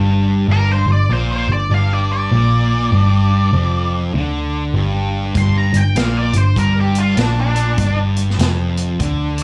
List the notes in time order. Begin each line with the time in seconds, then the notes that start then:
Already playing: G1 G2
0.48 G1 G2
0.52 A#4
0.71 C5
0.86 G1 G2
0.92 D5
1.09 A#1 A#2 C5
1.32 C5
1.47 G1 G2
1.53 D5
1.70 G1 G2
1.74 F5
1.93 D5
2.13 D5
2.31 A#1 A#2
2.92 G1 G2
3.53 F1 F2
4.14 D2 D3
4.74 G1 G2
5.35 G1 G2 C6, kick, closed hi-hat
5.58 A#5
5.73 G1 G2 G5, closed hi-hat
5.96 A#1 A#2 F5, snare, closed hi-hat
6.17 D5
6.33 G1 G2, closed hi-hat
6.38 C5
6.56 G1 G2 A#4, kick, closed hi-hat
6.81 G4
6.95 F4, closed hi-hat
7.17 A#1 A#2 D4, snare, closed hi-hat
7.41 D4
7.56 closed hi-hat
7.78 G1 G2, kick, closed hi-hat
8.16 closed hi-hat
8.30 snare
8.39 F1 F2, snare, closed hi-hat
8.77 closed hi-hat
9.00 D2 D3, kick, closed hi-hat
9.38 closed hi-hat